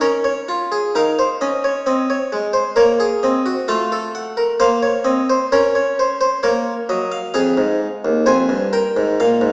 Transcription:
0.01 0.30 C#4 medium
0.01 0.24 A#4 medium
0.01 0.23 C#5 medium
0.24 0.54 C#5 medium
0.48 0.77 F4 medium
0.72 0.94 G#4 medium
0.95 1.24 D#4 medium
0.95 1.18 A#4 medium
0.95 1.24 F5 medium
1.19 1.47 C5 medium
1.41 1.70 C#4 medium
1.41 1.86 D#5 medium
1.64 1.87 C#5 medium
1.86 2.15 C4 medium
1.86 2.09 D#5 medium
2.10 2.38 C#5 medium
2.32 2.61 G#3 medium
2.53 2.77 C5 medium
2.76 3.06 A#3 medium
2.76 3.00 A#4 medium
2.76 3.06 C#5 medium
3.00 3.29 G#4 medium
3.23 3.52 C4 medium
3.23 3.52 D#5 medium
3.46 3.69 F#4 medium
3.68 4.58 A3 medium
3.68 3.91 F4 medium
3.68 3.97 F5 medium
3.92 4.21 A4 medium
4.15 4.44 F#5 medium
4.37 4.60 A#4 medium
4.60 4.89 A#3 medium
4.60 4.83 C5 medium
4.60 4.89 F5 medium
4.83 5.11 C#5 medium
5.04 5.34 C4 medium
5.04 5.34 D#5 medium
5.30 5.52 C5 medium
5.52 6.41 C#4 medium
5.52 5.75 A#4 medium
5.52 5.74 C#5 medium
5.75 6.04 C#5 medium
5.99 6.20 C5 medium
6.21 6.43 C5 medium
6.43 6.72 A#3 medium
6.43 7.32 A#4 medium
6.43 6.72 C#5 medium
6.89 7.18 F#3 medium
6.89 7.12 D#5 medium
7.12 7.33 F5 medium
7.34 7.57 F2 medium
7.34 8.23 G#4 medium
7.34 8.23 F5 medium
7.57 7.86 G#2 medium
8.05 8.26 D#2 medium
8.26 8.49 F2 medium
8.26 8.55 C5 medium
8.26 8.55 G#5 medium
8.49 8.78 G2 medium
8.73 9.52 A#4 medium
8.73 9.01 G5 medium
8.97 9.18 G#2 medium
9.20 9.41 A#2 medium
9.20 9.52 F5 medium
9.41 9.52 G#2 medium

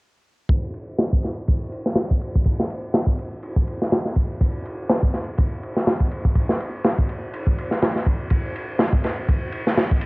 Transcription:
0.49 kick loud
0.49 ride medium
0.74 ride medium
0.98 snare loud
0.98 ride medium
1.13 kick medium
1.23 snare soft
1.23 ride medium
1.48 kick medium
1.48 ride medium
1.72 ride medium
1.86 snare soft
1.96 snare loud
1.96 ride medium
2.11 kick loud
2.21 ride medium
2.36 kick medium
2.44 kick loud
2.44 ride medium
2.60 snare soft
2.70 ride medium
2.94 snare loud
2.94 ride medium
3.07 kick loud
3.19 ride medium
3.43 ride medium
3.56 kick medium
3.67 ride medium
3.82 snare soft
3.92 snare loud
3.92 ride medium
4.05 snare soft
4.16 kick medium
4.16 ride medium
4.41 kick loud
4.41 ride medium
4.66 ride medium
4.89 snare loud
4.89 ride medium
5.03 kick loud
5.14 snare soft
5.14 ride medium
5.38 kick loud
5.38 ride medium
5.63 ride medium
5.77 snare soft
5.87 snare loud
5.87 ride medium
6.01 kick medium
6.11 ride medium
6.25 kick medium
6.35 kick medium
6.35 ride medium
6.49 snare medium
6.61 ride medium
6.84 snare loud
6.84 ride medium
6.99 kick loud
7.09 ride medium
7.34 ride medium
7.47 kick medium
7.58 ride medium
7.71 snare soft
7.82 snare loud
7.82 ride medium
7.96 snare soft
8.06 kick loud
8.06 ride medium
8.30 kick loud
8.30 ride medium
8.56 ride medium
8.79 snare loud
8.79 ride medium
8.93 kick loud
9.04 snare soft
9.04 ride medium
9.28 kick loud
9.28 ride medium
9.52 ride medium
9.67 snare medium
9.77 snare loud
9.77 ride medium
9.91 kick loud
10.01 ride medium

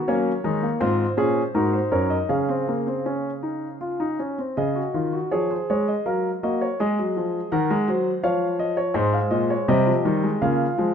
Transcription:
0.08 0.31 F#3 medium
0.08 0.31 A#3 medium
0.08 0.31 C#4 medium
0.08 0.79 C#5 medium
0.44 0.67 D#3 medium
0.44 0.62 G#3 medium
0.44 0.67 D#4 medium
0.63 0.81 A#3 medium
0.80 1.04 G#2 medium
0.80 1.04 C4 medium
0.80 1.04 F4 medium
0.80 1.53 C5 medium
1.17 1.41 A#2 medium
1.17 1.41 C#4 medium
1.17 1.41 G#4 medium
1.55 1.78 G#2 medium
1.55 2.28 D#4 medium
1.55 1.78 F#4 medium
1.55 1.73 A#4 medium
1.73 1.92 C5 medium
1.92 2.15 F#2 medium
1.92 2.15 A#4 medium
1.92 2.10 C#5 medium
2.10 2.29 D#5 medium
2.29 4.15 C#3 medium
2.29 2.48 C#4 medium
2.29 4.15 G#4 medium
2.29 4.15 F5 medium
2.49 2.67 C4 medium
2.68 2.87 A#3 medium
2.87 3.05 C4 medium
3.06 3.29 C#4 medium
3.43 3.66 D#4 medium
3.81 3.99 F4 medium
4.00 4.19 D#4 medium
4.19 4.38 C#4 medium
4.38 4.57 C4 medium
4.57 4.80 C#3 medium
4.57 4.75 G#4 medium
4.57 5.30 D#5 medium
4.75 4.94 F#4 medium
4.94 5.17 D#3 medium
4.94 5.13 F4 medium
5.13 5.31 F#4 medium
5.31 5.55 F3 medium
5.31 6.03 G#4 medium
5.31 5.50 C#5 medium
5.51 5.68 C5 medium
5.70 5.92 G#3 medium
5.70 5.87 C#5 medium
5.88 6.05 D#5 medium
6.06 6.28 F#3 medium
6.06 6.28 A#4 medium
6.06 6.28 F5 medium
6.43 6.66 A#3 medium
6.43 6.66 F#4 medium
6.43 6.61 D#5 medium
6.61 6.79 C#5 medium
6.80 6.97 G#3 medium
6.80 7.50 G#4 medium
6.80 7.50 D#5 medium
6.99 7.16 F#3 medium
7.17 7.39 F3 medium
7.52 7.69 D#3 medium
7.52 7.74 A#4 medium
7.52 8.22 F#5 medium
7.70 7.88 G#3 medium
7.88 8.10 F#3 medium
7.88 8.10 C5 medium
8.23 8.93 F3 medium
8.23 8.75 C#5 medium
8.23 8.46 F5 medium
8.59 8.77 D#5 medium
8.77 8.95 C#5 medium
8.94 9.17 G#2 loud
8.94 9.65 G#3 medium
8.94 9.66 C5 medium
8.94 9.12 D#5 medium
9.13 9.31 F5 medium
9.31 9.54 A#2 medium
9.31 9.49 D#5 medium
9.50 9.68 C#5 medium
9.68 9.91 C3 loud
9.68 9.86 G3 medium
9.68 10.40 G4 medium
9.68 10.40 D#5 medium
9.87 10.04 F3 medium
10.05 10.28 D#3 medium
10.05 10.23 G3 medium
10.23 10.41 G#3 medium
10.42 10.65 C#3 medium
10.42 10.65 A#3 medium
10.42 10.94 F4 medium
10.42 10.94 F5 medium
10.78 10.94 F3 medium
10.78 10.94 G#3 medium

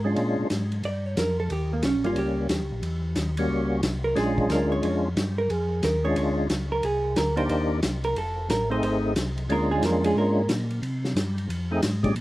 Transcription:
0.00 0.16 G#2 medium
0.04 0.48 G#3 medium
0.04 0.48 C#4 medium
0.04 0.48 D4 medium
0.04 0.49 F4 medium
0.16 0.37 A#2 medium
0.16 ride medium
0.39 0.45 A#2 soft
0.50 0.83 G#2 medium
0.50 snare medium
0.50 hi-hat pedal soft
0.50 ride medium
0.72 ride soft
0.83 1.16 G2 medium
0.83 1.06 D5 medium
0.83 ride soft
1.06 1.17 C#5 medium
1.17 1.49 F2 medium
1.17 1.39 A#4 medium
1.17 snare medium
1.17 hi-hat pedal medium
1.17 ride medium
1.40 1.51 A4 medium
1.50 1.82 D#2 medium
1.50 1.72 G4 medium
1.50 ride medium
1.73 1.84 A#3 medium
1.82 1.94 C2 medium
1.82 2.05 C#4 medium
1.82 snare medium
1.82 hi-hat pedal soft
1.82 ride medium
1.94 2.05 A#1 soft
2.04 2.16 G1 medium
2.04 2.47 G3 medium
2.04 2.48 A#3 medium
2.04 2.48 C#4 medium
2.04 2.17 F4 medium
2.04 ride soft
2.15 2.48 C#2 medium
2.15 3.13 G4 medium
2.15 ride medium
2.49 2.60 D#2 medium
2.49 snare medium
2.49 hi-hat pedal medium
2.49 ride medium
2.60 2.72 C#2 soft
2.72 2.83 A#1 medium
2.82 3.15 E2 medium
2.82 ride medium
3.15 3.49 D#2 medium
3.15 snare medium
3.15 hi-hat pedal medium
3.15 ride medium
3.37 3.81 G3 medium
3.37 3.81 A#3 medium
3.37 3.81 C#4 medium
3.37 3.82 F#4 medium
3.37 ride medium
3.49 3.82 C#2 medium
3.83 4.15 C2 medium
3.83 snare medium
3.83 hi-hat pedal medium
3.83 ride medium
4.04 4.16 A#4 medium
4.16 4.49 A#1 medium
4.16 5.09 G#3 medium
4.16 5.09 C#4 medium
4.16 5.09 D4 medium
4.16 5.10 F4 medium
4.16 4.48 G#4 medium
4.16 snare soft
4.16 ride medium
4.38 kick soft
4.50 4.82 D2 medium
4.50 4.72 A#4 medium
4.50 snare medium
4.50 hi-hat pedal soft
4.50 ride medium
4.72 4.83 C#5 medium
4.83 5.15 F2 medium
4.83 5.05 C#5 medium
4.83 ride medium
5.16 5.49 G2 medium
5.16 snare medium
5.16 hi-hat pedal medium
5.16 ride medium
5.38 5.50 A#4 medium
5.49 5.82 F2 medium
5.49 5.83 G#4 medium
5.49 ride medium
5.83 6.15 D#2 medium
5.83 6.05 A#4 medium
5.83 snare medium
5.83 hi-hat pedal medium
5.83 ride medium
6.04 6.47 G#3 medium
6.04 6.48 C#4 medium
6.04 6.48 D4 medium
6.04 6.48 F4 medium
6.04 6.16 C#5 medium
6.16 6.49 D2 medium
6.16 6.38 C#5 medium
6.16 ride medium
6.50 6.82 C#2 medium
6.50 snare medium
6.50 hi-hat pedal medium
6.50 ride medium
6.72 6.83 A#4 medium
6.83 7.16 C2 medium
6.83 7.15 G#4 medium
6.83 ride medium
7.16 7.49 D2 medium
7.16 7.37 A#4 medium
7.16 snare medium
7.16 hi-hat pedal medium
7.16 ride medium
7.36 7.80 A#3 medium
7.36 7.80 D4 medium
7.36 7.80 D#4 medium
7.36 7.81 G4 medium
7.36 7.49 C5 medium
7.36 ride soft
7.49 7.82 D#2 medium
7.49 7.71 C5 medium
7.49 ride medium
7.83 8.15 C2 medium
7.83 snare medium
7.83 hi-hat pedal medium
7.83 ride medium
8.04 8.16 A#4 medium
8.04 ride soft
8.16 8.49 F1 medium
8.16 8.48 A4 medium
8.16 ride medium
8.49 8.81 A1 medium
8.49 8.71 A#4 medium
8.49 snare medium
8.49 hi-hat pedal medium
8.49 ride medium
8.70 9.13 A3 medium
8.70 9.14 C4 medium
8.70 9.14 D#4 medium
8.70 9.14 G#4 medium
8.70 8.83 C5 medium
8.83 9.15 G#1 medium
8.83 8.97 C5 medium
8.83 ride soft
9.16 9.48 C2 medium
9.16 snare medium
9.16 hi-hat pedal medium
9.16 ride medium
9.38 ride soft
9.49 9.81 D2 medium
9.49 10.42 G#3 medium
9.49 9.71 A#3 medium
9.49 10.42 C#4 medium
9.49 10.42 D4 medium
9.49 10.42 F4 medium
9.49 9.71 A#4 medium
9.49 ride soft
9.71 9.83 G#3 medium
9.71 9.83 G#4 medium
9.82 10.14 F2 medium
9.82 10.05 A#3 medium
9.82 10.04 A#4 medium
9.82 snare medium
9.82 hi-hat pedal soft
9.82 ride medium
10.04 10.16 G#3 medium
10.04 10.16 G#4 medium
10.04 ride medium
10.15 10.48 G#2 medium
10.15 10.48 A#3 medium
10.15 10.48 A#4 medium
10.49 10.81 A#2 medium
10.49 snare medium
10.49 hi-hat pedal medium
10.49 ride medium
10.70 ride soft
10.82 11.14 C3 medium
10.82 ride medium
11.04 snare soft
11.15 11.48 G2 medium
11.15 snare medium
11.15 hi-hat pedal medium
11.15 ride medium
11.38 ride soft
11.49 11.81 F2 medium
11.49 ride medium
11.71 11.81 A3 medium
11.71 11.82 C4 medium
11.71 11.82 D#4 medium
11.71 11.82 G#4 medium
11.82 12.15 G#2 medium
11.82 snare medium
11.82 hi-hat pedal medium
11.82 ride medium
12.03 12.14 A#2 medium
12.03 12.14 G#3 medium
12.03 12.14 C#4 medium
12.03 12.15 D4 medium
12.03 12.15 G4 medium
12.03 kick soft
12.03 ride soft
12.15 12.21 A#2 medium
12.15 ride medium

